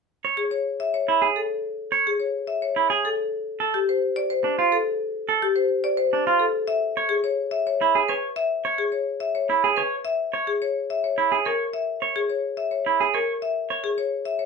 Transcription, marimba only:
0, 0, Header, 1, 2, 480
1, 0, Start_track
1, 0, Key_signature, 3, "major"
1, 0, Tempo, 560748
1, 1403, Time_signature, 3, 2, 24, 8
1, 12374, End_track
2, 0, Start_track
2, 0, Title_t, "Marimba"
2, 0, Program_c, 0, 12
2, 319, Note_on_c, 0, 68, 62
2, 438, Note_on_c, 0, 73, 51
2, 478, Note_off_c, 0, 68, 0
2, 598, Note_off_c, 0, 73, 0
2, 684, Note_on_c, 0, 76, 66
2, 805, Note_on_c, 0, 73, 52
2, 840, Note_off_c, 0, 76, 0
2, 960, Note_off_c, 0, 73, 0
2, 1165, Note_on_c, 0, 69, 50
2, 1320, Note_off_c, 0, 69, 0
2, 1771, Note_on_c, 0, 68, 66
2, 1879, Note_on_c, 0, 73, 49
2, 1922, Note_off_c, 0, 68, 0
2, 2038, Note_off_c, 0, 73, 0
2, 2118, Note_on_c, 0, 76, 59
2, 2244, Note_on_c, 0, 73, 51
2, 2277, Note_off_c, 0, 76, 0
2, 2399, Note_off_c, 0, 73, 0
2, 2611, Note_on_c, 0, 69, 52
2, 2762, Note_off_c, 0, 69, 0
2, 3203, Note_on_c, 0, 67, 68
2, 3330, Note_on_c, 0, 72, 53
2, 3359, Note_off_c, 0, 67, 0
2, 3482, Note_off_c, 0, 72, 0
2, 3562, Note_on_c, 0, 74, 63
2, 3682, Note_on_c, 0, 72, 58
2, 3719, Note_off_c, 0, 74, 0
2, 3839, Note_off_c, 0, 72, 0
2, 4042, Note_on_c, 0, 69, 57
2, 4199, Note_off_c, 0, 69, 0
2, 4643, Note_on_c, 0, 67, 71
2, 4757, Note_on_c, 0, 72, 57
2, 4799, Note_off_c, 0, 67, 0
2, 4917, Note_off_c, 0, 72, 0
2, 4998, Note_on_c, 0, 74, 74
2, 5114, Note_on_c, 0, 72, 60
2, 5157, Note_off_c, 0, 74, 0
2, 5276, Note_off_c, 0, 72, 0
2, 5474, Note_on_c, 0, 69, 58
2, 5636, Note_off_c, 0, 69, 0
2, 5714, Note_on_c, 0, 76, 76
2, 5876, Note_off_c, 0, 76, 0
2, 6069, Note_on_c, 0, 68, 74
2, 6196, Note_on_c, 0, 73, 57
2, 6234, Note_off_c, 0, 68, 0
2, 6357, Note_off_c, 0, 73, 0
2, 6431, Note_on_c, 0, 76, 68
2, 6564, Note_on_c, 0, 73, 56
2, 6595, Note_off_c, 0, 76, 0
2, 6720, Note_off_c, 0, 73, 0
2, 6920, Note_on_c, 0, 71, 56
2, 7078, Note_off_c, 0, 71, 0
2, 7158, Note_on_c, 0, 76, 72
2, 7317, Note_off_c, 0, 76, 0
2, 7519, Note_on_c, 0, 68, 64
2, 7636, Note_on_c, 0, 73, 49
2, 7678, Note_off_c, 0, 68, 0
2, 7797, Note_off_c, 0, 73, 0
2, 7878, Note_on_c, 0, 76, 64
2, 8003, Note_on_c, 0, 73, 53
2, 8037, Note_off_c, 0, 76, 0
2, 8159, Note_off_c, 0, 73, 0
2, 8359, Note_on_c, 0, 71, 55
2, 8518, Note_off_c, 0, 71, 0
2, 8599, Note_on_c, 0, 76, 71
2, 8758, Note_off_c, 0, 76, 0
2, 8965, Note_on_c, 0, 68, 64
2, 9089, Note_on_c, 0, 73, 52
2, 9120, Note_off_c, 0, 68, 0
2, 9241, Note_off_c, 0, 73, 0
2, 9332, Note_on_c, 0, 76, 63
2, 9451, Note_on_c, 0, 73, 52
2, 9482, Note_off_c, 0, 76, 0
2, 9602, Note_off_c, 0, 73, 0
2, 9805, Note_on_c, 0, 70, 46
2, 9960, Note_off_c, 0, 70, 0
2, 10045, Note_on_c, 0, 76, 62
2, 10200, Note_off_c, 0, 76, 0
2, 10407, Note_on_c, 0, 68, 66
2, 10525, Note_on_c, 0, 73, 48
2, 10561, Note_off_c, 0, 68, 0
2, 10680, Note_off_c, 0, 73, 0
2, 10762, Note_on_c, 0, 76, 61
2, 10882, Note_on_c, 0, 73, 49
2, 10919, Note_off_c, 0, 76, 0
2, 11039, Note_off_c, 0, 73, 0
2, 11246, Note_on_c, 0, 70, 49
2, 11400, Note_off_c, 0, 70, 0
2, 11489, Note_on_c, 0, 76, 64
2, 11641, Note_off_c, 0, 76, 0
2, 11845, Note_on_c, 0, 68, 65
2, 11966, Note_on_c, 0, 73, 51
2, 12000, Note_off_c, 0, 68, 0
2, 12120, Note_off_c, 0, 73, 0
2, 12202, Note_on_c, 0, 76, 59
2, 12319, Note_on_c, 0, 73, 49
2, 12359, Note_off_c, 0, 76, 0
2, 12374, Note_off_c, 0, 73, 0
2, 12374, End_track
0, 0, End_of_file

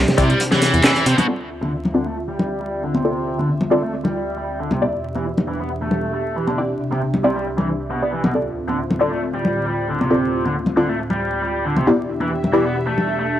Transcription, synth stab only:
0, 0, Header, 1, 2, 480
1, 0, Start_track
1, 0, Tempo, 441176
1, 1398, Time_signature, 4, 2, 24, 8
1, 14575, End_track
2, 0, Start_track
2, 0, Title_t, "Synth stab"
2, 0, Program_c, 0, 62
2, 192, Note_on_c, 0, 60, 100
2, 192, Note_on_c, 0, 64, 94
2, 192, Note_on_c, 0, 67, 94
2, 192, Note_on_c, 0, 74, 116
2, 321, Note_off_c, 0, 67, 0
2, 321, Note_off_c, 0, 74, 0
2, 322, Note_off_c, 0, 60, 0
2, 322, Note_off_c, 0, 64, 0
2, 1392, Note_on_c, 0, 69, 82
2, 1393, Note_on_c, 0, 60, 90
2, 1393, Note_on_c, 0, 65, 82
2, 1393, Note_on_c, 0, 74, 96
2, 2088, Note_off_c, 0, 69, 0
2, 2089, Note_off_c, 0, 60, 0
2, 2089, Note_off_c, 0, 65, 0
2, 2089, Note_off_c, 0, 74, 0
2, 2115, Note_on_c, 0, 74, 95
2, 2116, Note_on_c, 0, 60, 86
2, 2116, Note_on_c, 0, 65, 76
2, 2117, Note_on_c, 0, 69, 77
2, 2309, Note_off_c, 0, 60, 0
2, 2309, Note_off_c, 0, 65, 0
2, 2309, Note_off_c, 0, 74, 0
2, 2310, Note_off_c, 0, 69, 0
2, 3313, Note_on_c, 0, 74, 87
2, 3314, Note_on_c, 0, 60, 79
2, 3314, Note_on_c, 0, 69, 73
2, 3315, Note_on_c, 0, 65, 72
2, 3508, Note_off_c, 0, 60, 0
2, 3508, Note_off_c, 0, 65, 0
2, 3508, Note_off_c, 0, 69, 0
2, 3508, Note_off_c, 0, 74, 0
2, 4037, Note_on_c, 0, 65, 89
2, 4038, Note_on_c, 0, 74, 106
2, 4039, Note_on_c, 0, 60, 98
2, 4039, Note_on_c, 0, 69, 88
2, 4164, Note_off_c, 0, 65, 0
2, 4164, Note_off_c, 0, 74, 0
2, 4165, Note_off_c, 0, 60, 0
2, 4165, Note_off_c, 0, 69, 0
2, 5241, Note_on_c, 0, 67, 83
2, 5242, Note_on_c, 0, 59, 92
2, 5242, Note_on_c, 0, 64, 82
2, 5243, Note_on_c, 0, 74, 96
2, 5933, Note_off_c, 0, 59, 0
2, 5933, Note_off_c, 0, 64, 0
2, 5933, Note_off_c, 0, 67, 0
2, 5934, Note_off_c, 0, 74, 0
2, 7158, Note_on_c, 0, 64, 74
2, 7158, Note_on_c, 0, 67, 73
2, 7159, Note_on_c, 0, 74, 89
2, 7160, Note_on_c, 0, 60, 81
2, 7350, Note_off_c, 0, 64, 0
2, 7350, Note_off_c, 0, 67, 0
2, 7351, Note_off_c, 0, 60, 0
2, 7351, Note_off_c, 0, 74, 0
2, 7879, Note_on_c, 0, 60, 96
2, 7879, Note_on_c, 0, 74, 106
2, 7880, Note_on_c, 0, 64, 89
2, 7881, Note_on_c, 0, 67, 88
2, 8005, Note_off_c, 0, 60, 0
2, 8005, Note_off_c, 0, 74, 0
2, 8006, Note_off_c, 0, 64, 0
2, 8006, Note_off_c, 0, 67, 0
2, 8730, Note_on_c, 0, 60, 70
2, 8730, Note_on_c, 0, 67, 67
2, 8730, Note_on_c, 0, 74, 78
2, 8731, Note_on_c, 0, 64, 66
2, 8837, Note_off_c, 0, 60, 0
2, 8837, Note_off_c, 0, 67, 0
2, 8837, Note_off_c, 0, 74, 0
2, 8838, Note_off_c, 0, 64, 0
2, 9081, Note_on_c, 0, 65, 84
2, 9081, Note_on_c, 0, 69, 81
2, 9082, Note_on_c, 0, 60, 87
2, 9083, Note_on_c, 0, 74, 99
2, 9773, Note_off_c, 0, 60, 0
2, 9773, Note_off_c, 0, 65, 0
2, 9773, Note_off_c, 0, 69, 0
2, 9774, Note_off_c, 0, 74, 0
2, 9799, Note_on_c, 0, 65, 79
2, 9799, Note_on_c, 0, 69, 79
2, 9799, Note_on_c, 0, 74, 96
2, 9801, Note_on_c, 0, 60, 86
2, 9990, Note_off_c, 0, 65, 0
2, 9990, Note_off_c, 0, 69, 0
2, 9991, Note_off_c, 0, 60, 0
2, 9991, Note_off_c, 0, 74, 0
2, 10995, Note_on_c, 0, 60, 81
2, 10995, Note_on_c, 0, 65, 75
2, 10995, Note_on_c, 0, 69, 73
2, 10995, Note_on_c, 0, 74, 87
2, 11188, Note_off_c, 0, 60, 0
2, 11188, Note_off_c, 0, 69, 0
2, 11189, Note_off_c, 0, 65, 0
2, 11189, Note_off_c, 0, 74, 0
2, 11715, Note_on_c, 0, 60, 97
2, 11716, Note_on_c, 0, 65, 89
2, 11716, Note_on_c, 0, 69, 90
2, 11716, Note_on_c, 0, 74, 107
2, 11843, Note_off_c, 0, 60, 0
2, 11843, Note_off_c, 0, 69, 0
2, 11843, Note_off_c, 0, 74, 0
2, 11844, Note_off_c, 0, 65, 0
2, 12916, Note_on_c, 0, 59, 93
2, 12916, Note_on_c, 0, 74, 99
2, 12917, Note_on_c, 0, 64, 82
2, 12917, Note_on_c, 0, 67, 83
2, 13610, Note_off_c, 0, 59, 0
2, 13610, Note_off_c, 0, 74, 0
2, 13611, Note_off_c, 0, 64, 0
2, 13611, Note_off_c, 0, 67, 0
2, 13636, Note_on_c, 0, 64, 80
2, 13636, Note_on_c, 0, 67, 79
2, 13636, Note_on_c, 0, 74, 95
2, 13637, Note_on_c, 0, 59, 86
2, 13829, Note_off_c, 0, 59, 0
2, 13829, Note_off_c, 0, 64, 0
2, 13829, Note_off_c, 0, 67, 0
2, 13829, Note_off_c, 0, 74, 0
2, 14575, End_track
0, 0, End_of_file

